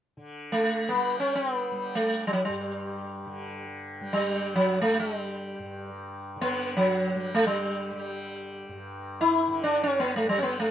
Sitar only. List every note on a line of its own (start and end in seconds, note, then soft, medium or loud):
0.52 0.89 A3 medium
0.89 1.16 B3 medium
1.20 1.34 C#4 medium
1.35 1.54 C4 medium
1.54 1.95 B3 medium
1.95 2.27 A3 medium
2.27 2.33 G3 medium
2.33 2.41 F#3 soft
2.45 3.64 G3 medium
4.13 4.55 G3 medium
4.56 4.79 F#3 medium
4.82 4.99 A3 medium
5.00 5.18 G#3 medium
5.18 5.89 G3 medium
6.41 6.76 B3 medium
6.77 7.29 F#3 medium
7.35 7.46 A3 medium
7.47 8.77 G3 medium
9.21 9.63 E4 medium
9.64 9.83 D4 medium
9.83 9.99 C#4 medium
10.00 10.15 B3 medium
10.16 10.29 A3 medium
10.29 10.39 G3 medium
10.38 10.43 C#4 medium
10.43 10.59 B3 medium
10.60 10.71 A3 medium